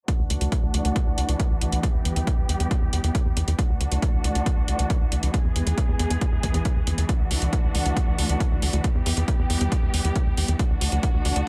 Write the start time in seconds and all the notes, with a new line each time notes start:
0.08 E3 A3 D4 F#4, kick, closed hi-hat
0.19 D2
0.30 D2, closed hi-hat
0.41 D2, closed hi-hat
0.52 kick, closed hi-hat
0.63 D2
0.74 D2, closed hi-hat
0.85 D2, closed hi-hat
0.96 kick, closed hi-hat
1.07 D2
1.18 D2, closed hi-hat
1.29 D2, closed hi-hat
1.40 kick, closed hi-hat
1.51 D2
1.61 D2, closed hi-hat
1.72 D2, closed hi-hat
1.83 G3 B3 G4, kick, closed hi-hat
1.94 E2
2.05 E2, closed hi-hat
2.16 E2, closed hi-hat
2.27 kick, closed hi-hat
2.38 E2
2.49 E2, closed hi-hat
2.60 E2, closed hi-hat
2.71 kick, closed hi-hat
2.82 E2
2.93 E2, closed hi-hat
3.04 E2, closed hi-hat
3.15 kick, closed hi-hat
3.26 E2
3.37 E2, closed hi-hat
3.48 E2, closed hi-hat
3.59 E3 A3 D4 F#4, kick, closed hi-hat
3.70 D2
3.81 D2, closed hi-hat
3.92 D2, closed hi-hat
4.02 kick, closed hi-hat
4.13 D2
4.24 D2, closed hi-hat
4.35 D2, closed hi-hat
4.46 kick, closed hi-hat
4.57 D2
4.68 D2, closed hi-hat
4.79 D2, closed hi-hat
4.90 kick, closed hi-hat
5.01 D2
5.12 D2, closed hi-hat
5.23 D2, closed hi-hat
5.34 G#3 B3 G#4, kick, closed hi-hat
5.45 E2
5.56 E2, closed hi-hat
5.67 E2, closed hi-hat
5.78 kick, closed hi-hat
5.89 E2
5.99 E2, closed hi-hat
6.10 E2, closed hi-hat
6.21 kick, closed hi-hat
6.32 E2
6.43 E2, kick, closed hi-hat
6.54 E2, closed hi-hat
6.65 kick, closed hi-hat
6.76 E2
6.87 E2, closed hi-hat
6.98 E2, closed hi-hat
7.09 A3 D4 F#4, kick, closed hi-hat
7.20 D2
7.31 D2, open hi-hat
7.42 D2, closed hi-hat
7.53 kick, closed hi-hat
7.64 D2
7.75 D2, open hi-hat
7.86 D2, closed hi-hat
7.97 kick, closed hi-hat
8.08 D2
8.18 D2, open hi-hat
8.29 D2, closed hi-hat
8.40 kick, closed hi-hat
8.51 D2
8.62 D2, open hi-hat
8.73 D2, closed hi-hat
8.84 G3 B3 G4, kick, closed hi-hat
8.95 E2
9.06 E2, open hi-hat
9.17 E2, closed hi-hat
9.28 kick, closed hi-hat
9.39 E2
9.50 E2, open hi-hat
9.61 E2, closed hi-hat
9.72 kick, closed hi-hat
9.83 E2
9.94 E2, open hi-hat
10.05 E2, closed hi-hat
10.16 kick, closed hi-hat
10.27 E2
10.37 E2, open hi-hat
10.48 E2, closed hi-hat
10.59 A3 D4 F#4, kick, closed hi-hat
10.70 D2
10.81 D2, open hi-hat
10.92 D2, closed hi-hat
11.03 kick, closed hi-hat
11.14 D2
11.25 D2, open hi-hat
11.36 D2, closed hi-hat